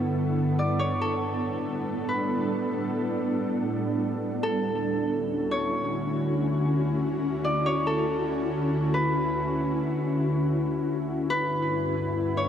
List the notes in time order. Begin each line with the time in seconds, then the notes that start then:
Already playing: G2 D3 B3 E4 A4 C#5
0.59 D5
0.79 C#5
1.01 A2 G3 D4 A4
2.09 B4
4.43 D2 D3 C#4 E4 F#4 A4
5.51 C#5
7.44 D5
7.66 C#5
7.87 A4
8.94 B4
11.30 G2 G3 B3 A4 B4
12.37 C#5